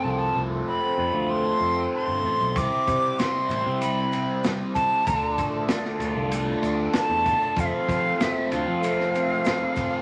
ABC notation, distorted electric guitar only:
X:1
M:4/4
L:1/8
Q:1/4=96
K:Flyd
V:1 name="Distorted electric guitar"
[F,A,CF] A, C F A, C A, F | C, G, C E G, C G, E | D, A, D F A, D A, F | F, A, C F A, C A, F |]